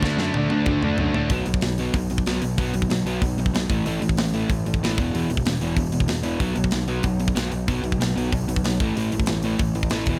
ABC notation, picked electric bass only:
X:1
M:4/4
L:1/8
Q:1/4=188
K:D
V:1 name="Picked electric bass" clef=bass
D,, F,, D,, D,, D,, D,, F,, A,, | [K:A] B,,, B,,, B,,,2 B,,,2 B,,, B,,, | B,,, B,,, B,,, B,,, B,,, B,,, B,,, A,,, | A,,, A,,, A,,,2 A,,,2 A,,, E,,, |
E,,, E,,, E,,, E,,, E,,, E,,, E,,, E,,, | B,,, B,,, B,,,2 B,,,2 B,,, B,,, | B,,, B,,, B,,, B,,, B,,, B,,, B,,, A,,, | A,,, A,,, A,,,2 A,,,2 A,,, E,,, |]